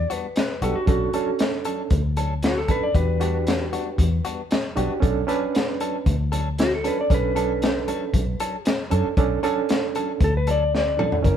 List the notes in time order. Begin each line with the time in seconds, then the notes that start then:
Already playing: D5
0.10 G3 B3 D4 F#4, closed hi-hat
0.15 B4
0.36 snare, closed hi-hat
0.40 B4
0.62 B1 G3 B3 D4 F#4 G4 A4, closed hi-hat
0.74 F#4, muted fingered electric bass stroke
0.86 B1 C#4 D4 F#4 A4, kick, closed hi-hat
1.13 F#3 C#4 D4 A4, closed hi-hat
1.39 snare, closed hi-hat
1.65 F#3 C#4 D4 A4, closed hi-hat
1.90 D2, kick, closed hi-hat
2.17 F#3 C#4 D4 A4, closed hi-hat
2.43 F#4, snare, closed hi-hat
2.58 A4
2.68 F#3 C#4 D4 A4 B4, kick, closed hi-hat
2.84 D5
2.95 E2 D4 F#4 G4 B4, kick, closed hi-hat
3.20 G3 B3 D4 F#4 G4, closed hi-hat
3.47 snare, closed hi-hat
3.73 G3 B3 D4 F#4, closed hi-hat
3.98 E2, kick, closed hi-hat
4.25 G3 B3 D4 F#4, closed hi-hat
4.51 snare, closed hi-hat
4.76 B1 G3 B3 D4 F#4 G4, closed hi-hat
4.89 muted fingered electric bass stroke
5.00 B1 C#4 D4 A4, kick, closed hi-hat
5.27 F#3 C#4 D4 A4 B4, closed hi-hat
5.55 snare, closed hi-hat
5.80 F#3 C#4 D4 A4, closed hi-hat
6.06 D2, kick, closed hi-hat
6.32 F#3 C#4 D4 A4, closed hi-hat
6.58 F#4, snare, closed hi-hat
6.75 A4
6.84 F#3 C#4 D4 A4 B4, closed hi-hat
7.01 D5
7.10 B1 C#4 D4 A4, kick, closed hi-hat
7.14 B4
7.35 F#3 C#4 D4 A4, closed hi-hat
7.62 snare, closed hi-hat
7.88 F#3 C#4 D4 A4, closed hi-hat
8.14 B1, kick, closed hi-hat
8.40 F#3 C#4 D4 A4, closed hi-hat
8.65 snare, closed hi-hat
8.90 F#2 F#3 C#4 D4 A4, closed hi-hat
9.05 muted fingered electric bass stroke
9.17 B1 C#4 D4 A4, kick, closed hi-hat
9.43 F#3 C#4 D4 A4, closed hi-hat
9.69 snare, closed hi-hat
9.95 F#3 C#4 D4 A4, closed hi-hat
10.20 D2 A4, kick, closed hi-hat
10.37 B4
10.47 F#3 C#4 D4 A4, closed hi-hat
10.51 D5
10.75 D5, snare
10.97 F#3 C#4 D4 A4, mid tom
11.12 floor tom
11.22 F#1 C#4 E4 A#4, kick, closed hi-hat